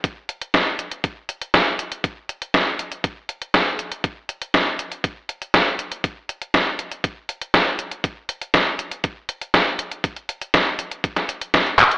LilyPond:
\new DrumStaff \with { instrumentName = "Drums" } \drummode { \time 4/4 \tempo 4 = 120 <hh bd>8 hh16 hh16 <hh bd sn>8 hh16 hh16 <hh bd>8 hh16 hh16 <hh bd sn>8 hh16 hh16 | <hh bd>8 hh16 hh16 <hh bd sn>8 hh16 hh16 <hh bd>8 hh16 hh16 <hh bd sn>8 hh16 hh16 | <hh bd>8 hh16 hh16 <hh bd sn>8 hh16 hh16 <hh bd>8 hh16 hh16 <hh bd sn>8 hh16 hh16 | <hh bd>8 hh16 hh16 <hh bd sn>8 hh16 hh16 <hh bd>8 hh16 hh16 <hh bd sn>8 hh16 hh16 |
<hh bd>8 hh16 hh16 <hh bd sn>8 hh16 hh16 <hh bd>8 hh16 hh16 <hh bd sn>8 hh16 hh16 | <hh bd>16 hh16 hh16 hh16 <hh bd sn>8 hh16 hh16 <hh bd>16 <hh sn>16 hh16 hh16 <hh bd sn>16 hh16 <hc hh>16 hh16 | }